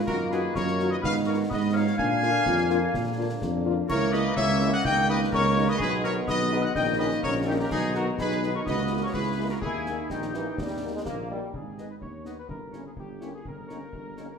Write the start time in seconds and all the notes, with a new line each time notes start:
Already playing: F4
0.06 F#2 D#3 A#3 F#4 A#4 A#5, concert bass drum, crash
0.30 A#3 D#4 F#4 G#4 B4 B5, snare
0.54 F#2 A#4 C#5 C#6, concert bass drum, snare
0.67 snare
0.79 A#3 D#4 F#4, snare
0.90 B4 D#5 D#6
1.02 G#2 B3 D#4 B4 F5 F6, concert bass drum, snare
1.26 B3 D#4 F4 A#4 C#5 C#6
1.49 G#2 B4 D#5 D#6, concert bass drum, snare
1.73 B3 D#4 F4 C#5 F5 F6
1.97 A#2 D3 A#3 D4 F5 G#5 G#6, concert bass drum
2.22 A#3 D4 F4, snare
2.46 F2 F4, concert bass drum, snare
2.58 snare
2.69 A#3 D4 F4, snare
2.94 A#2, concert bass drum, snare
3.18 A#3 D4 F4
3.41 F2 D4, concert bass drum, snare
3.66 A#3 D4 F4
3.89 C#2 E3 A#3 E4 A#4 C#5 C#6, concert bass drum, crash
4.13 G#3 A#3 E4 B4 D#5 D#6, snare
4.36 C#2 C#4 C#5 E5 E6, concert bass drum, snare
4.49 snare
4.61 G#3 A#3 E4, snare
4.73 D#5 F#5 F#6
4.84 C#2 D#3 D#4 D#5 G5 G6, concert bass drum, snare
5.09 G3 A#3 D#4 B4 D#5 D#6
5.32 C#2 A#3 A#4 C#5 C#6, concert bass drum, snare
5.58 G3 A#3 D#4
5.68 B4 D#5 D#6
5.78 B1 G#3 B3 G#4 B4 B5, concert bass drum
6.04 G#3 B3 D#4 A#4 C#5 C#6, snare
6.27 B1 B4 D#5 D#6, concert bass drum, snare
6.40 snare
6.52 G#3 B3 D#4, snare
6.62 D#5 F#5 F#6
6.75 A#1 D#3 A#3 D#4 D#5 G5 G6, concert bass drum, snare
6.99 A#3 C#4 D#4 B4 D#5 D#6
7.23 A#1 C#4 A#4 C#5 C#6, concert bass drum, snare
7.47 A#3 C#4 D#4 G4 G5
7.59 G4 A#4 A#5
7.71 B1 G#3 B3 D#4 G#4 G#5, concert bass drum, crash
7.95 G#3 B3 D#4 F#4 A#4 A#5, snare
8.18 B1 D#4 G#4 B4 B5, concert bass drum, snare
8.31 snare
8.43 G#3 B3 D#4, snare
8.55 A#4 C#5 C#6
8.65 C#2 E3 A#3 F#4 B4 D#5 D#6, concert bass drum, snare
8.91 G#3 A#3 E4
9.03 A#4 C#5 C#6
9.13 C#2 E4 G#4 B4 B5, concert bass drum, snare
9.39 G#3 A#3 E4
9.50 F#4 A#4 A#5
9.61 D#2 D#3 A#3 D#4 E4 G#4 G#5, concert bass drum
9.86 G3 A#3 D#4, snare
10.10 A#1 D#3 D#4 G4 G5, concert bass drum, snare
10.22 snare
10.33 E3 G3 A#3 D#4, snare
10.57 D#2 G3, concert bass drum, snare
10.83 G3 A#3 D#4
10.93 G#3
11.05 A#1 A#3, concert bass drum, snare
11.30 G3 A#3 D#4
11.53 G#1 G#4, concert bass drum
11.78 B3 D#4 B4 D#5, snare
11.91 B4
12.01 D#2 C#5, concert bass drum
12.25 B3 D#4 B4 D#5, snare
12.38 B4
12.49 G1 A#4, concert bass drum
12.72 A#3 C#4 E4 C#5, snare
12.86 G#4
12.97 G1 G4, concert bass drum
13.21 A#3 C#4 E4 C#5, snare
13.35 G#4
13.45 G1 A#4, concert bass drum
13.68 A#3 C#4 D#4 C#5, snare
13.93 G1, concert bass drum
14.17 A#3 C#4 D#4 C#5, snare